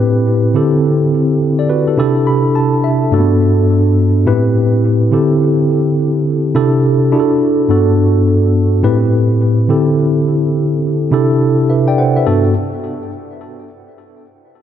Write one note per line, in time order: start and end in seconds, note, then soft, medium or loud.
0.00 0.55 A2 medium
0.00 0.53 C4 medium
0.00 0.54 E4 medium
0.00 0.55 G4 medium
0.00 0.56 B4 medium
0.54 1.95 D3 medium
0.54 1.95 C4 medium
0.54 1.11 E4 medium
0.54 1.11 G4 medium
0.54 1.12 A4 medium
1.59 1.69 A4 medium
1.59 1.69 D5 medium
1.69 1.87 F#4 medium
1.69 1.87 B4 medium
1.88 1.97 E4 medium
1.88 1.98 A4 medium
1.97 3.10 C3 medium
1.97 3.10 D4 medium
1.97 3.10 E4 medium
1.97 3.10 G4 medium
1.97 3.11 A4 loud
2.27 2.53 B5 medium
2.55 2.82 A5 medium
2.84 3.10 E5 medium
3.11 4.24 G2 medium
3.11 3.20 A3 medium
3.11 4.24 D4 medium
3.11 4.25 F#4 medium
3.11 4.25 A4 medium
3.19 4.28 B3 medium
4.26 5.12 A2 medium
4.26 5.11 C4 medium
4.26 5.11 E4 medium
4.26 5.12 G4 medium
4.26 5.13 B4 medium
5.11 6.52 D3 medium
5.11 6.52 C4 medium
5.11 6.52 E4 medium
5.11 6.53 G4 medium
5.11 6.53 A4 medium
6.55 7.12 C3 medium
6.55 7.11 D4 medium
6.55 7.11 E4 medium
6.55 7.12 G4 medium
6.55 7.13 A4 loud
7.12 7.68 D4 medium
7.12 7.70 E4 medium
7.12 7.69 F#4 medium
7.12 7.21 G#4 medium
7.20 7.70 A4 medium
7.68 8.81 G2 medium
7.68 8.81 B3 medium
7.68 8.81 D4 medium
7.68 8.82 F#4 medium
7.68 8.82 A4 medium
8.83 9.69 A2 medium
8.83 9.68 C4 medium
8.83 9.68 E4 medium
8.83 9.69 G4 medium
8.83 9.70 B4 medium
9.68 11.09 D3 medium
9.68 11.09 C4 medium
9.68 11.10 E4 medium
9.68 11.10 G4 medium
9.68 11.10 A4 medium
11.11 12.24 C3 medium
11.11 12.24 D4 medium
11.11 12.24 E4 medium
11.11 12.25 G4 medium
11.11 12.25 A4 loud
11.70 11.87 B4 medium
11.70 11.87 E5 medium
11.88 11.98 D5 medium
11.88 11.98 G5 medium
11.98 12.16 C5 medium
11.98 12.15 F#5 medium
12.16 12.44 B4 medium
12.16 12.43 E5 medium
12.27 12.53 G2 medium
12.27 12.53 B3 medium
12.27 12.53 D4 medium
12.27 12.53 F#4 medium
12.27 12.53 A4 medium